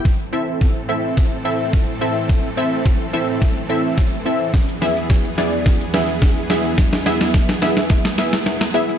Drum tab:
HH |----------------|x-x-x-x-x-x-x-x-|x-x-x-x-x-x-x-x-|x-o-x-o-x-o-x-o-|
SH |----------------|----------------|xxxxxxxxxxxxxxxx|xxxxxxxxxxxxxxxx|
SD |o---o---o---o---|o---o---o---o---|o-o-o-o-o-o-o-o-|oooooooooooooo--|
BD |o---o---o---o---|o---o---o---o---|o---o---o---o---|o---o---o-------|